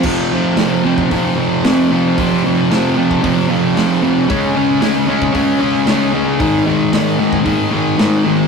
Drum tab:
CC |x---------------|----------------|----------------|----------------|
HH |----o---o---o---|o---o---o---o---|o---o---o---o---|o---o---o---o---|
SD |----o-------o---|----o-------o---|----o-------o---|----o-------o---|
BD |o------oo-------|o------oo-------|o------oo-------|o------oo-------|